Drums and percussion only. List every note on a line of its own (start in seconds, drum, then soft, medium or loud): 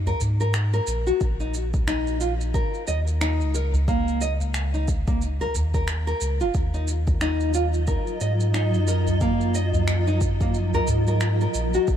0.06 udu medium
0.06 shaker soft
0.20 udu medium
0.20 shaker medium
0.40 shaker soft
0.54 finger snap loud
0.54 shaker soft
0.73 shaker soft
0.87 shaker medium
1.07 shaker soft
1.21 kick loud
1.21 shaker soft
1.40 shaker soft
1.54 shaker medium
1.74 kick loud
1.74 udu medium
1.74 shaker soft
1.88 finger snap loud
1.88 shaker soft
2.07 shaker soft
2.21 shaker medium
2.41 shaker soft
2.54 kick loud
2.54 shaker soft
2.74 shaker soft
2.88 shaker medium
3.07 shaker soft
3.21 finger snap loud
3.21 shaker soft
3.41 shaker soft
3.55 shaker medium
3.73 udu loud
3.73 shaker soft
3.88 kick loud
3.88 shaker soft
4.08 shaker soft
4.21 shaker medium
4.41 udu medium
4.41 shaker soft
4.54 finger snap medium
4.54 shaker soft
4.74 shaker soft
4.88 kick loud
4.88 shaker medium
5.08 kick loud
5.08 shaker soft
5.22 shaker soft
5.40 udu medium
5.40 shaker soft
5.54 udu medium
5.54 shaker medium
5.74 kick medium
5.74 shaker soft
5.88 finger snap medium
5.88 shaker soft
6.07 shaker soft
6.21 shaker medium
6.40 shaker soft
6.54 kick loud
6.54 shaker soft
6.74 shaker soft
6.88 shaker medium
7.07 kick loud
7.07 udu medium
7.07 shaker soft
7.21 finger snap medium
7.21 shaker soft
7.40 shaker soft
7.54 shaker medium
7.74 shaker soft
7.87 kick loud
7.87 shaker soft
8.07 shaker soft
8.21 shaker medium
8.40 shaker soft
8.54 finger snap medium
8.54 shaker soft
8.74 shaker soft
8.88 shaker medium
9.07 udu medium
9.07 shaker soft
9.21 kick loud
9.21 shaker soft
9.41 shaker soft
9.55 shaker medium
9.73 udu medium
9.73 shaker soft
9.88 finger snap medium
9.88 shaker soft
10.08 shaker soft
10.21 kick loud
10.21 shaker medium
10.41 kick medium
10.41 shaker soft
10.54 shaker soft
10.73 udu medium
10.73 shaker soft
10.87 udu medium
10.87 shaker medium
11.07 shaker soft
11.21 finger snap medium
11.21 shaker soft
11.41 shaker soft
11.54 shaker medium
11.74 shaker soft
11.88 kick loud
11.88 shaker soft